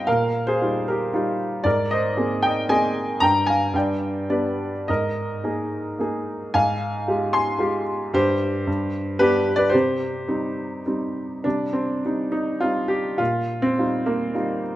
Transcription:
grand piano
0.07 A#2 A#4 F5
0.47 G#4 C5
0.62 G3 D#4 F4
0.88 G4 A#4
1.13 G3 D#4 F4
1.64 G#2 A#4 D5
1.91 C5 D#5
2.17 A#3 C4 G#4
2.43 D#5 G5
2.69 A#3 C4 G#4 D#5 G#5
3.20 G2 G5 A#5
3.47 F5 G#5
3.74 G2 G5
3.78 D5
4.29 B3 D4 G4 B4 D5
4.88 G#2 A#4 D#5
5.44 A#3 D#4 G#4
5.99 A#3 D#4 G#4
6.54 G#2 F5 G#5
7.08 G#3 F4 G4
7.33 G#5 C6
7.58 G#3 F4 G4
8.13 G2 G4 C5
8.67 G2
9.19 G3 B3 D4 G4 B4
9.56 B4 D5
9.70 G4 C5
9.74 C3
10.28 G3 C4 D#4
10.86 G3 C4 D#4
11.44 C3 G3 D4
11.73 C4
12.05 G3 C4 D#4
12.32 D#4
12.61 G3 C4 D#4 F4
12.88 G4
13.18 A#2 F4
13.62 C4
13.78 G3 D#4 F4
14.06 A#3
14.34 G3 D#4 F4

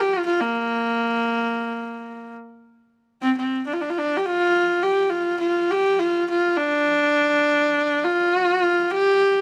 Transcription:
horsehead fiddle
0.00 G4
0.13 F4
0.26 F4
0.40 A#3
3.22 C4
3.37 C4
3.67 D4
3.73 F4
3.81 D4
3.90 F4
3.99 D4
4.17 G4
4.26 F4
4.83 G4
5.10 F4
5.40 F4
5.70 G4
5.99 F4
6.30 F4
6.57 D4
8.04 F4
8.91 G4

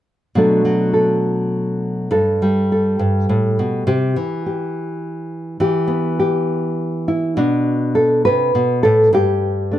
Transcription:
nylon-string guitar
0.35 B2 F#3 A3 D4 A4
0.65 F#3
0.93 A4
2.11 G2 A4
2.42 G3
2.72 A4
2.99 G2
3.29 A2
3.59 B2
3.87 C3 G4
4.16 E3
4.46 G4
5.60 E3 G4
5.87 B3
6.19 G4
7.08 E4
7.37 B2 D4
7.95 A4
8.25 C3 B4
8.55 B2
8.83 A2 A4
9.13 G2 G4
9.71 A3 D4

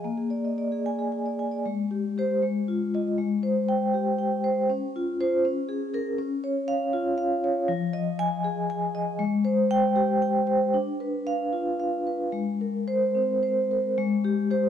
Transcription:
vibraphone
0.04 A#3
0.17 G#4
0.30 D5
0.45 D#5
0.58 D5
0.72 G#4
0.86 G#5
0.99 G#4
1.12 G#5
1.26 D5
1.39 G#5
1.51 D5
1.66 G#3
1.91 G4
2.18 G4 C5
2.42 G#3
2.68 F4
2.94 F4 D#5
3.18 G#3
3.43 C5
3.69 G5
3.94 G4
4.18 G5
4.44 C5
4.70 C#4
4.96 F4
5.21 F4 C5
5.45 C#4
5.69 G#4
5.94 G#4 A#4
6.18 C#4
6.44 C#5
6.68 F5
6.93 F4
7.18 F5
7.44 C#5
7.68 F3
7.93 D#5
8.19 G#5
8.44 G#4
8.70 G#5
8.95 D#5
9.19 G#3
9.45 C5
9.71 G5
9.96 G4
10.22 G5
10.47 C5
10.74 D4
11.00 B4
11.27 F5
11.53 F4
11.80 F5
12.07 B4
12.32 G#3
12.61 A#4
12.88 C5
13.15 C4
13.43 C5
13.71 A#4
13.98 G#3
14.24 G4
14.51 G4 C5

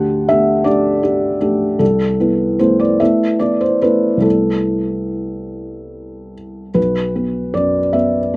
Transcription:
felt piano
Already playing: D2 D4 G4 F#5
0.29 A3 D4 G4 E5
0.64 A3 D4 G4 D5
1.03 D4 G4
1.41 A3 D4 G4
1.79 C2 A4
2.20 B3 E4
2.59 A3 B3 E4 C5
2.80 D5
3.00 A3 B3 E4 E5
3.39 B3 E4 D5
3.61 C5
3.82 A3 B3 E4 B4
4.17 C2 A3 B3
4.21 E4 A4
6.74 B1 B4
7.15 B3
7.54 F#2 D5
7.93 B3 E5

